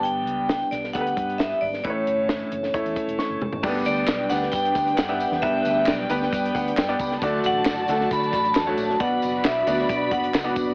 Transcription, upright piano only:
<<
  \new Staff \with { instrumentName = "Upright piano" } { \time 4/4 \key g \lydian \tempo 4 = 134 <b g' d''>4 r4 <b g' a' b'>4. r8 | <a e' b' cis''>4. r8 <a e' cis''>4. r8 | <a b d' g' d''>4 r8 <b d' g' d''>4~ <b d' g' d''>16 r8 <b d' g' e''>8 r16 | <b d' g' b'>4 r8 <b d' g' b'>4~ <b d' g' b'>16 r8 <b d' g' d''>8 r16 |
<a d' fis' d''>4 r8 <a d' fis' a'>4~ <a d' fis' a'>16 r8 <a d' fis' cis''>8 r16 | <b d' fis' d''>4 r8 <b d' fis' d''>4~ <b d' fis' d''>16 r8 <b d' fis' d''>8 r16 | }
  \new Staff \with { instrumentName = "Upright piano" } { \clef bass \time 4/4 \key g \lydian g,4 r2. | a,4. r4. cis'''4 | g,4. r2 r8 | g,4. r4 fis''8 g''8 b''8 |
d4. r2 r8 | b,4. r2 r8 | }
>>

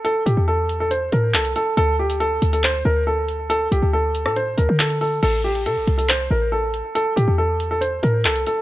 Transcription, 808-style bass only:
\new Staff \with { instrumentName = "808-style bass" } { \clef bass \time 4/4 \key a \phrygian \tempo 4 = 139 r8 a,16 e,4.~ e,16 a,8 c,8 r8 | d,4. d,4 d,4.~ | d,8 c,16 d,4 a,8. d,16 d4~ d16 | a,,4 c16 a,,16 c,4 a,,4~ a,,16 r16 |
r8 a,16 e,4.~ e,16 a,8 c,8 r8 | }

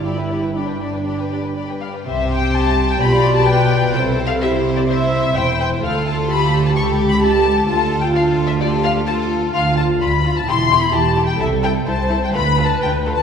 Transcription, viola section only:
\new Staff \with { instrumentName = "Viola section" } { \time 4/4 \key c \major \tempo 4 = 128 e'4 d'2~ d'8 r8 | r2 g'4 b'4 | a'4 g'4 e''4 c''4 | a'4 g'2. |
f'2 g'4 f'4~ | f'2 e'4 g'4 | a'4 c''4 b'2 | }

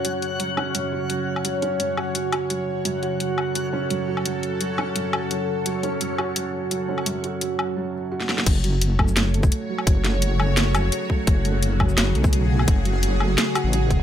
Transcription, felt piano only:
\new Staff \with { instrumentName = "Felt piano" } { \clef bass \time 4/4 \key fis \minor \tempo 4 = 171 fis8 r8 fis8 cis'8 fis,8 fis'8 fis8 r8 | fis8 cis'8 fis,8 fis'8 fis8 fis'8 fis8 r8 | fis,8 fis'8 fis8 r8 fis8 cis'8 fis,8 fis'8 | fis8 r8 fis8 cis'8 fis,8 fis'8 fis8 r8 |
fis8 cis'8 fis,8 fis'8 fis8 r8 fis8 cis'8 | fis,8 fis'8 fis8 r8 fis8 r8 fis'8 a8 | r8 fis4 a8 r8 a4 fis8~ | fis8 a8 r8 a4 fis4 a8 |
r8 a4 fis4 a8 r8 a8~ | a8 fis4 a8 r8 fis'8 fis8 r8 | }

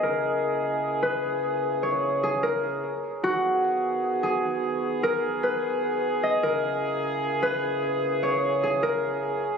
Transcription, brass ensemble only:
\new Staff \with { instrumentName = "Brass ensemble" } { \time 4/4 \key gis \minor \tempo 4 = 150 << { gis'1~ | gis'1 | gis'1~ | gis'1~ |
gis'1~ | gis'1 | } \\ { <cis ais e'>1~ | <cis ais e'>1 | <dis b fis'>1~ | <dis b fis'>1 |
<cis ais e'>1~ | <cis ais e'>1 | } >> }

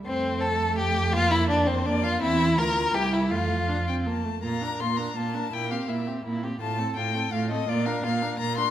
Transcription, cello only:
\new Staff \with { instrumentName = "Cello" } { \clef bass \time 3/4 \key f \major \tempo 4 = 166 f,2.~ | f,2. | e,4 d,4 c,4 | f,2~ f,8 r8 |
\key bes \major bes,4 bes,4 bes,4 | bes,4 bes,4 bes,4 | a,4 a,4 a,4 | bes,4 bes,4 bes,4 | }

